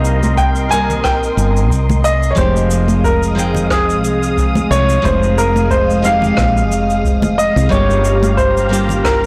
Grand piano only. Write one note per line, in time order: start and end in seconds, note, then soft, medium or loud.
0.00 0.40 D#5 medium
0.37 0.72 G5 loud
0.71 1.05 G#5 loud
1.04 2.07 G5 medium
2.04 2.32 D#5 loud
2.31 2.37 C#5 medium
2.38 3.06 C5 medium
3.04 3.67 A#4 medium
3.71 4.74 G#4 medium
4.71 5.05 C#5 medium
5.05 5.39 C5 medium
5.38 5.72 A#4 medium
5.71 6.05 C5 medium
6.05 7.42 F5 loud
7.38 7.72 D#5 medium
7.71 8.34 C#5 medium
8.37 9.06 C5 medium
9.04 9.26 A#4 medium